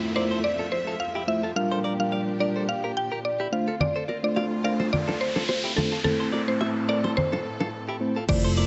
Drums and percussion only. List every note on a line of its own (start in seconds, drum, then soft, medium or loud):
3.80 low conga medium
4.09 high bongo soft
4.37 high bongo medium
4.80 high bongo medium
4.80 low bongo soft
4.93 low conga medium
5.09 low bongo medium
5.36 low bongo medium
5.49 high bongo medium
5.78 low bongo medium
5.78 low conga medium
6.05 low conga medium
6.33 high bongo soft
6.61 high bongo medium
7.04 high bongo medium
7.04 low bongo medium
7.18 low conga medium
7.33 low bongo medium
7.60 low bongo medium
8.29 kick loud
8.29 crash loud
8.29 low conga medium
8.29 shaker medium
8.44 shaker medium
8.57 open hi-hat medium
8.57 high bongo medium
8.57 shaker medium